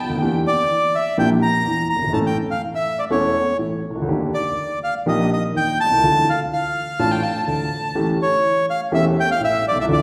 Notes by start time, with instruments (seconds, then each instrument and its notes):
Already playing: violin G5
0.04 grand piano C#2
0.10 grand piano D2
0.15 grand piano D#2
0.21 grand piano E2 E3 A#3 D4 G4
0.47 bandoneon D5
0.95 bandoneon E5
1.17 grand piano A#1 A#2 E3 A#3 D4 G4, bandoneon G5
1.42 bandoneon A#5
1.66 grand piano E2 E3
1.90 bandoneon A#5
1.96 grand piano F#1
2.02 grand piano G1
2.07 grand piano G#1
2.12 grand piano A1 A2 E3 A3 C#4 A4, bandoneon A5
2.27 bandoneon G5
2.51 bandoneon F5
2.75 bandoneon E5
2.99 bandoneon D5
3.10 grand piano E1 E2 E3 A3 C#4 A4, bandoneon C#5
3.59 grand piano A1 A2
3.90 grand piano C2
3.95 grand piano C#2
4.02 grand piano D2
4.08 grand piano D#2 D#3 A#3 D4 G4
4.34 bandoneon D5
4.84 bandoneon F5
5.06 grand piano A#1 A#2 D#3 A#3 D4 G4, bandoneon D#5
5.33 bandoneon D#5
5.55 grand piano D#2 D#3, bandoneon G5
5.81 bandoneon A5
5.86 grand piano B1
5.91 grand piano C2
5.97 grand piano C#2
6.03 grand piano D2 D3 E3 A3 D4 F4
6.30 bandoneon F5
6.53 bandoneon F5
6.99 grand piano A1 A2 E3 A3 D4 F4, violin A5
7.12 violin G5
7.23 violin A5
7.47 grand piano D2 D3, violin A5
7.95 grand piano A1 A2 E3 A3 C#4 G4
8.22 bandoneon C#5
8.70 bandoneon F5
8.92 grand piano E1 E2 E3 A3 C#4 G4, bandoneon E5
9.20 bandoneon G5
9.31 bandoneon F5
9.40 grand piano A1 A2, bandoneon E5
9.68 grand piano B1, bandoneon D5
9.76 grand piano C2
9.81 grand piano C#2, bandoneon E5
9.88 grand piano D2 D3 E3 A3 D4 F4
9.93 bandoneon D5